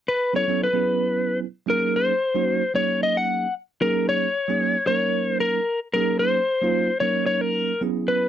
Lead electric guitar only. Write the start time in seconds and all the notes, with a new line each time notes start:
0.08 B4
0.36 C#5
0.64 B4
1.70 A#4
1.96 C5
2.75 C#5
3.03 D#5
3.17 F#5
3.82 A#4
4.09 C#5
4.87 C#5
5.28 C5
5.40 A#4
5.94 A#4
6.19 C5
7.00 C#5
7.26 C#5
7.41 A#4
8.08 B4